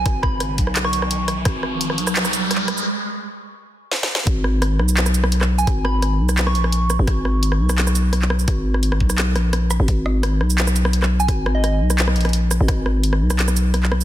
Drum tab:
HH |x-----------------------x-----------x-----------x-----------x-----------x-----------x-----------|x-----------------------x-----------x-----------x-----------x-----------x-----------x-----------|------------------------------------------------------------------------------------------------|x-----------------------x-----------------------x-----------x-----------x-----------------------|
SH |------------------------------------------------------------------------------------------------|------------------------------------------x-----------x-----x-----------------------------x-----|------------------------------------------------------------------------------------------------|------------------------------------------x-----------x-----x-----------------------------x-----|
CP |------------------------------------------------x-----------------------------------------------|------------------------------------------------x--------------------------x--------------------|------------------------------------------------------------------------------------------------|------------------------------------------------x-----------------------------x-----------------|
SD |r-----------r-----------r-----------------r-----------r-----------r-----------------r-----------|r-----------r-----------------r-----------r-----------r-----------------r-----------r-----------|------------------------------------------------------------------------o-------o-------o-------|------------r-----------r-----------r-----------------r-----------r-----------r-----------------|
BD |o-----------o-----------------------o-----------------------------------------------------------|o-----------------------------------------------------------------------------------------------|------------------------------------------------------------------------------------------------|o-----------------------------------------------------------------------------------------------|

HH |x-----------------------x-----------------------x-----------x-----------x-----------------------|x-----------------------x-----------------------x-----------x-----------x-----------------------|x-----------------------x-----------------------x-----------x-----------x-----------------------|x-----------------------x-----------------------x-----------x-----------x-----------------------|
SH |------------------------------------------x-----------------------------------------x-----------|------------------------------------------x-----------x-----x-----------------------------x-----|------------------------------------------x-----------------------------------------x-----------|------------------------------------------x-----------x-----x-----------------------------x-----|
CP |------------------------------------------------x-----------------------------------------------|------------------------------------------------x-----------------------------x-----------------|------------------------------------------------x-----------------------------------------------|------------------------------------------------x-----------------------------x-----------------|
SD |r-----------r-----------r-----------------r-----------r-----------r-----------------r-----------|r-----------r-----------------r-----------r-----------r-----------------r-----------r-----------|r-----------------r-----------r-----------r-----------------r-----------r-----------r-----------|------------r-----------r-----------r-----------------r-----------r-----------r-----------------|
BD |o-----------------------------------------------------------------------------------------------|o-----------------------------------------------------------------------------------------------|o-----------------------------------o-----------------------------------------------------------|o-----------------------------------------------------------------------------------------------|

HH |x-----------------------x-----------------------x-----------x--x--x--x--x-----------------------|x-----------------------x-----------------------x-----------x-----------x-----------------------|
SH |------------------------------------------x-----------------------------------------x-----------|------------------------------------------x-----------x-----x-----------------------------x-----|
CP |------------------------------------------------x-----------------------------------------------|------------------------------------------------x-----------------------------x-----------------|
SD |r-----------r-----------r-----------------r-----------r-----------r-----------------r-----------|r-----------r-----------------r-----------r-----------r-----------------r-----------r-----------|
BD |o-----------------------------------------------------------------------------------------------|o-----------------------------------------------------------------------------------------------|